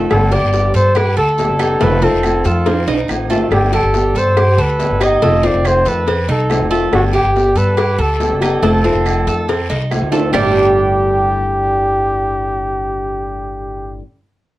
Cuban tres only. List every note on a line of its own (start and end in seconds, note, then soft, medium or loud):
0.00 0.30 A3 medium
0.32 0.73 G4 medium
0.74 0.94 A4 medium
0.95 1.16 G4 medium
1.16 1.58 A4 medium
1.59 1.80 D#4 medium
1.80 2.01 A3 medium
2.02 2.43 C4 medium
2.45 2.66 A4 medium
2.66 2.87 C4 medium
2.87 3.29 D#4 medium
3.30 3.71 A3 medium
3.73 4.14 G4 medium
4.16 4.36 A4 medium
4.37 4.58 G4 medium
4.58 5.00 A4 medium
5.01 5.22 D#4 medium
5.22 5.43 A3 loud
5.43 5.85 C4 medium
5.86 6.07 A4 medium
6.08 6.28 C4 medium
6.29 6.70 D#4 medium
6.71 7.13 A3 loud
7.13 7.55 G4 medium
7.56 7.77 A4 medium
7.77 7.98 G4 medium
7.99 8.40 A4 medium
8.42 8.63 D#4 medium
8.63 8.84 A3 medium
8.84 9.26 C4 medium
9.27 9.48 A4 medium
9.49 9.69 C4 medium
9.69 10.11 D#4 medium
10.12 10.32 A3 medium
10.33 13.98 G3 medium
10.33 13.99 D4 medium
10.33 13.99 G4 loud